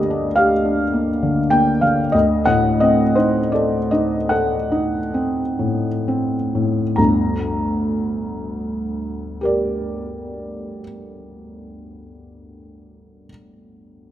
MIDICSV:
0, 0, Header, 1, 2, 480
1, 0, Start_track
1, 0, Key_signature, -2, "minor"
1, 0, Tempo, 1086957
1, 407, Tempo, 1207243
1, 887, Tempo, 1398601
1, 1367, Tempo, 1612903
1, 1847, Tempo, 1834862
1, 2326, Time_signature, 12, 3, 24, 8
1, 2327, Tempo, 1639344
1, 4418, End_track
2, 0, Start_track
2, 0, Title_t, "Felt piano"
2, 0, Program_c, 0, 0
2, 0, Control_c, 0, 64, 127
2, 0, Note_on_c, 0, 38, 56
2, 0, Note_on_c, 0, 50, 47
2, 0, Note_on_c, 0, 58, 43
2, 0, Note_on_c, 0, 62, 45
2, 0, Note_on_c, 0, 67, 46
2, 0, Note_on_c, 0, 74, 83
2, 0, Note_on_c, 0, 75, 64
2, 46, Note_off_c, 0, 62, 0
2, 46, Note_on_c, 0, 62, 47
2, 115, Note_off_c, 0, 67, 0
2, 157, Note_off_c, 0, 75, 0
2, 157, Note_on_c, 0, 77, 71
2, 164, Note_on_c, 0, 67, 45
2, 234, Note_off_c, 0, 62, 0
2, 286, Note_on_c, 0, 62, 40
2, 358, Note_off_c, 0, 67, 0
2, 411, Note_off_c, 0, 58, 0
2, 411, Note_on_c, 0, 58, 39
2, 478, Note_off_c, 0, 62, 0
2, 528, Note_off_c, 0, 50, 0
2, 528, Note_on_c, 0, 50, 40
2, 595, Note_off_c, 0, 58, 0
2, 638, Note_off_c, 0, 77, 0
2, 638, Note_on_c, 0, 79, 79
2, 647, Note_on_c, 0, 58, 46
2, 715, Note_off_c, 0, 50, 0
2, 760, Note_off_c, 0, 79, 0
2, 761, Note_on_c, 0, 77, 60
2, 765, Note_on_c, 0, 50, 32
2, 840, Note_off_c, 0, 58, 0
2, 859, Note_off_c, 0, 38, 0
2, 884, Note_on_c, 0, 75, 69
2, 887, Note_off_c, 0, 77, 0
2, 888, Note_off_c, 0, 50, 0
2, 892, Note_on_c, 0, 38, 51
2, 896, Note_off_c, 0, 74, 0
2, 896, Control_c, 0, 64, 0
2, 989, Control_c, 0, 64, 127
2, 998, Note_off_c, 0, 75, 0
2, 999, Note_on_c, 0, 78, 72
2, 1003, Note_on_c, 0, 45, 41
2, 1116, Note_off_c, 0, 78, 0
2, 1118, Note_on_c, 0, 75, 75
2, 1124, Note_on_c, 0, 60, 44
2, 1192, Note_off_c, 0, 45, 0
2, 1239, Note_on_c, 0, 72, 55
2, 1240, Note_off_c, 0, 75, 0
2, 1244, Note_on_c, 0, 63, 35
2, 1318, Note_off_c, 0, 60, 0
2, 1364, Note_on_c, 0, 74, 57
2, 1366, Note_off_c, 0, 72, 0
2, 1372, Note_on_c, 0, 69, 37
2, 1436, Note_off_c, 0, 63, 0
2, 1479, Note_off_c, 0, 74, 0
2, 1481, Note_on_c, 0, 75, 61
2, 1485, Note_on_c, 0, 63, 37
2, 1553, Note_off_c, 0, 69, 0
2, 1595, Note_on_c, 0, 78, 67
2, 1598, Note_off_c, 0, 75, 0
2, 1600, Note_on_c, 0, 69, 45
2, 1672, Note_off_c, 0, 63, 0
2, 1721, Note_on_c, 0, 63, 43
2, 1796, Note_off_c, 0, 69, 0
2, 1847, Note_on_c, 0, 60, 40
2, 1917, Note_off_c, 0, 63, 0
2, 1965, Note_on_c, 0, 45, 35
2, 2039, Note_off_c, 0, 60, 0
2, 2093, Note_on_c, 0, 60, 43
2, 2165, Note_off_c, 0, 45, 0
2, 2215, Note_on_c, 0, 45, 39
2, 2284, Note_off_c, 0, 60, 0
2, 2317, Note_off_c, 0, 38, 0
2, 2323, Note_on_c, 0, 82, 52
2, 2325, Note_off_c, 0, 78, 0
2, 2327, Note_off_c, 0, 45, 0
2, 2328, Note_on_c, 0, 31, 42
2, 2328, Note_on_c, 0, 38, 45
2, 2334, Control_c, 0, 64, 0
2, 2433, Control_c, 0, 64, 127
2, 3040, Note_on_c, 0, 67, 40
2, 3046, Note_on_c, 0, 70, 38
2, 3052, Note_on_c, 0, 74, 42
2, 3447, Note_off_c, 0, 82, 0
2, 3452, Note_off_c, 0, 31, 0
2, 3452, Note_off_c, 0, 38, 0
2, 4164, Note_off_c, 0, 67, 0
2, 4170, Note_off_c, 0, 70, 0
2, 4176, Note_off_c, 0, 74, 0
2, 4418, End_track
0, 0, End_of_file